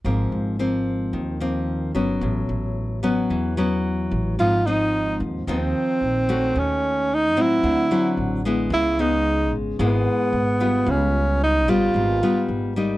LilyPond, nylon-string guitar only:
\new Staff \with { instrumentName = "Nylon-string guitar" } { \time 4/4 \key des \lydian \tempo 4 = 111 << { <f bes c'>4 <f bes c'>4. <f bes c'>4 <ges ces' des'>8~ | <ges ces' des'>4. <fis b cis'>4 <fis b cis'>4. | <f c' ees'>8 <f c' ees'>4. <f c' ees'>4 r8 <a des' ges'>8~ | <a des' ges'>4. <ges c' fes'>4 <fis c' e'>4 <aes ces' e'>8~ |
<aes ces' e'>8 <aes ces'>4. <aes ces' fes'>4 r8 <g ces' f'>8~ | <g ces' f'>4. <g ces' f'>4 <g ces' f'>4 <g bes ees'>8 | } \\ { aes,2 ees2 | a,2 e2 | aes,2 ees2 | ees2 d2 |
des2 aes,2 | des2 aes,2 | } >> }